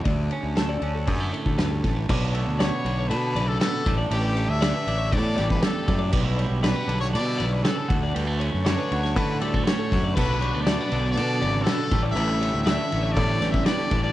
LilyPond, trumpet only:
\new Staff \with { instrumentName = "Trumpet" } { \time 4/4 \key d \major \tempo 4 = 119 r1 | r4 cis''4 b'8. a'16 a'8. r16 | g'8. e''4~ e''16 d''8. b'16 a'8. r16 | r4 b'8. cis''16 d''8. b'16 a'8. r16 |
r4 cis''4 b'8 a'8 cis''8. r16 | b'4 d''4 d''4 a'8. r16 | e''4 e''4 d''8. e''16 d''8. d''16 | }